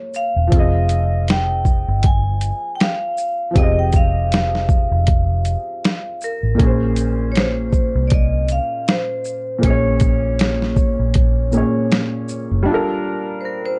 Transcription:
0.00 0.46 A#3 medium
0.00 0.47 F4 medium
0.00 0.49 G#4 medium
0.00 0.50 A#4 medium
0.00 0.22 C#5 medium
0.00 0.51 C#5 medium
0.14 1.25 F5 medium
0.14 shaker soft
0.36 0.50 E1 medium
0.47 3.49 F3 medium
0.47 3.51 C4 medium
0.52 1.83 F1 loud
0.52 3.52 F4 medium
0.52 kick loud
0.52 closed hi-hat medium
0.56 3.54 G#4 medium
0.56 3.55 D#5 medium
0.89 closed hi-hat soft
0.89 shaker soft
1.28 2.07 G5 medium
1.28 snare loud
1.28 closed hi-hat medium
1.65 kick medium
1.65 shaker soft
1.88 2.51 G1 medium
2.03 2.71 G#5 medium
2.03 kick loud
2.03 closed hi-hat medium
2.41 closed hi-hat soft
2.41 shaker soft
2.75 2.81 G5 medium
2.80 3.59 F5 loud
2.80 snare loud
2.80 closed hi-hat medium
3.17 shaker soft
3.51 6.53 F3 medium
3.51 6.54 C4 medium
3.56 4.87 F1 loud
3.56 6.56 G4 medium
3.56 6.57 G#4 medium
3.56 3.76 D#5 loud
3.56 kick loud
3.56 closed hi-hat medium
3.62 6.59 D#5 medium
3.79 3.86 G5 medium
3.93 6.30 F5 loud
3.93 kick medium
3.93 closed hi-hat soft
3.93 shaker soft
4.32 snare loud
4.32 closed hi-hat medium
4.55 snare soft
4.69 kick medium
4.69 shaker soft
4.91 5.54 F1 medium
5.07 kick loud
5.07 closed hi-hat medium
5.45 closed hi-hat soft
5.45 shaker soft
5.84 snare loud
5.84 closed hi-hat medium
6.21 7.27 A#4 medium
6.21 shaker soft
6.43 6.57 A1 medium
6.55 9.57 A#2 medium
6.55 9.58 A#3 medium
6.59 7.91 A#1 loud
6.59 9.60 C#4 medium
6.59 kick loud
6.59 closed hi-hat medium
6.63 9.61 G#4 medium
6.63 9.63 C5 medium
6.96 closed hi-hat soft
6.96 shaker medium
7.32 7.37 C#5 medium
7.32 closed hi-hat medium
7.37 8.08 C5 medium
7.37 snare loud
7.73 kick medium
7.73 shaker soft
7.95 8.58 C2 medium
8.07 8.13 D5 medium
8.07 closed hi-hat medium
8.12 8.48 D#5 medium
8.12 kick loud
8.48 8.90 F5 medium
8.48 closed hi-hat soft
8.48 shaker soft
8.88 9.67 C5 medium
8.88 snare loud
8.88 closed hi-hat medium
9.25 shaker soft
9.59 11.47 A#2 medium
9.59 11.48 A#3 medium
9.63 10.94 A#1 medium
9.63 11.50 C#4 medium
9.63 11.88 C#5 medium
9.63 kick loud
9.63 closed hi-hat medium
9.67 11.51 G#4 medium
9.67 11.53 C#5 medium
10.00 kick medium
10.00 closed hi-hat soft
10.00 shaker soft
10.39 snare loud
10.39 closed hi-hat medium
10.62 snare soft
10.76 kick medium
10.76 shaker soft
10.99 11.62 A#1 medium
11.14 kick medium
11.14 closed hi-hat medium
11.52 12.66 A#2 medium
11.52 12.67 A#3 medium
11.52 12.68 C#4 soft
11.52 shaker soft
11.56 12.68 G#4 medium
11.56 12.69 C#5 medium
11.92 snare loud
11.92 closed hi-hat medium
12.28 shaker soft
12.51 12.65 F#1 medium
12.63 13.79 G3 medium
12.63 13.79 D4 medium
12.68 13.79 F4 medium
12.68 13.79 A4 medium
12.74 13.79 A#4 medium
13.41 13.44 C5 medium
13.45 13.64 A#4 medium
13.66 13.79 C5 medium

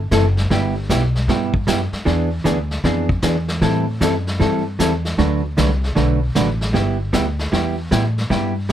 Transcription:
0.00 0.11 G1 medium
0.11 0.49 F#1 medium
0.11 0.24 C3 medium
0.11 0.24 E3 medium
0.11 0.24 A3 medium
0.11 0.24 E4 medium
0.11 0.24 A4 medium
0.11 kick soft
0.11 snare medium
0.11 hi-hat pedal medium
0.37 snare soft
0.50 0.89 G1 medium
0.50 0.73 G3 medium
0.50 0.73 B3 medium
0.50 0.73 E4 medium
0.50 0.74 G4 medium
0.50 brush sweep soft
0.50 kick soft
0.50 snare soft
0.89 1.27 B1 loud
0.89 1.02 G3 medium
0.89 1.02 B3 medium
0.89 1.02 E4 medium
0.89 1.02 G4 medium
0.89 kick soft
0.89 snare medium
0.89 hi-hat pedal medium
1.15 snare soft
1.28 1.66 G2 medium
1.28 1.51 G3 medium
1.28 1.51 B3 medium
1.28 1.52 E4 medium
1.28 1.52 G4 medium
1.28 brush sweep soft
1.28 kick soft
1.28 snare soft
1.54 kick medium
1.67 1.91 F#2 medium
1.67 1.79 G3 medium
1.67 1.80 B3 medium
1.67 1.80 E4 medium
1.67 1.80 G4 medium
1.67 kick soft
1.67 snare medium
1.67 hi-hat pedal medium
1.93 muted upright bass stroke soft
1.93 snare soft
2.05 2.44 E2 medium
2.05 2.28 E3 medium
2.05 2.28 B3 medium
2.05 2.29 D4 medium
2.05 2.29 G#4 medium
2.05 brush sweep soft
2.05 kick soft
2.05 snare soft
2.44 2.83 D2 loud
2.44 2.57 E3 medium
2.44 2.57 B3 medium
2.44 2.57 D4 medium
2.44 2.57 G#4 medium
2.44 kick soft
2.44 snare medium
2.44 hi-hat pedal medium
2.71 snare soft
2.84 3.22 F2 medium
2.84 3.07 E3 medium
2.84 3.07 B3 medium
2.84 3.07 D4 medium
2.84 3.07 G#4 medium
2.84 brush sweep soft
2.84 kick soft
2.84 snare soft
3.09 kick medium
3.22 3.61 E2 medium
3.22 3.35 E3 medium
3.22 3.35 B3 medium
3.22 3.36 D4 medium
3.22 3.36 G#4 medium
3.22 kick soft
3.22 snare medium
3.22 hi-hat pedal medium
3.48 snare soft
3.61 4.00 A2 medium
3.61 3.84 E3 medium
3.61 3.84 G3 medium
3.61 3.85 C4 medium
3.61 3.85 E4 medium
3.61 3.85 A4 medium
3.61 brush sweep soft
3.61 kick soft
3.61 snare soft
4.01 4.39 F#2 medium
4.01 4.13 E3 medium
4.01 4.13 G3 medium
4.01 4.13 C4 medium
4.01 4.14 E4 medium
4.01 4.14 A4 medium
4.01 kick soft
4.01 snare medium
4.01 hi-hat pedal medium
4.27 snare soft
4.40 4.78 G2 medium
4.40 4.62 E3 medium
4.40 4.62 G3 medium
4.40 4.63 C4 medium
4.40 4.63 E4 medium
4.40 4.63 A4 medium
4.40 brush sweep soft
4.40 kick soft
4.40 snare soft
4.79 5.17 E2 medium
4.79 4.91 E3 medium
4.79 4.91 G3 medium
4.79 4.91 C4 medium
4.79 4.92 E4 medium
4.79 4.92 A4 medium
4.79 kick soft
4.79 snare medium
4.79 hi-hat pedal medium
5.05 snare soft
5.18 5.56 D2 medium
5.18 5.40 D3 medium
5.18 5.41 F#3 medium
5.18 5.41 A3 medium
5.18 5.41 D4 medium
5.18 5.41 F#4 medium
5.18 5.41 B4 medium
5.18 brush sweep soft
5.18 kick soft
5.18 snare soft
5.57 5.95 C2 medium
5.57 5.69 D3 medium
5.57 5.69 F#3 medium
5.57 5.69 A3 medium
5.57 5.70 D4 medium
5.57 5.69 F#4 medium
5.57 5.70 B4 medium
5.57 kick soft
5.57 snare medium
5.57 hi-hat pedal medium
5.84 snare soft
5.95 6.34 B1 medium
5.95 6.18 D3 medium
5.95 6.18 F#3 medium
5.95 6.19 A3 medium
5.95 6.19 D4 medium
5.95 6.19 F#4 medium
5.95 6.19 B4 medium
5.95 brush sweep soft
5.95 kick soft
5.95 snare soft
6.35 6.73 A1 medium
6.35 6.47 D3 medium
6.35 6.47 F#3 medium
6.35 6.47 A3 medium
6.35 6.48 D4 medium
6.35 6.48 F#4 medium
6.35 6.48 B4 medium
6.35 kick soft
6.35 snare medium
6.35 hi-hat pedal medium
6.61 snare soft
6.73 7.12 G1 medium
6.73 6.96 G3 medium
6.73 6.96 B3 medium
6.73 6.96 E4 medium
6.73 6.97 G4 medium
6.73 brush sweep medium
6.73 kick soft
6.73 snare soft
7.13 7.51 D2 loud
7.13 7.25 G3 medium
7.13 7.25 B3 medium
7.13 7.25 E4 medium
7.13 7.26 G4 medium
7.13 kick soft
7.13 snare medium
7.13 hi-hat pedal medium
7.39 snare soft
7.52 7.90 E2 medium
7.52 7.74 G3 medium
7.52 7.75 B3 medium
7.52 7.75 E4 medium
7.52 7.75 G4 medium
7.52 brush sweep medium
7.52 kick soft
7.52 snare soft
7.91 8.29 A2 loud
7.91 8.03 G3 medium
7.91 8.03 B3 medium
7.91 8.03 E4 medium
7.91 8.04 G4 medium
7.91 kick soft
7.91 snare medium
7.91 hi-hat pedal medium
8.18 snare soft
8.30 8.68 G2 medium
8.30 8.52 G3 medium
8.30 8.52 B3 medium
8.30 8.53 E4 medium
8.30 8.53 G4 medium
8.30 brush sweep soft
8.30 kick soft
8.30 snare soft

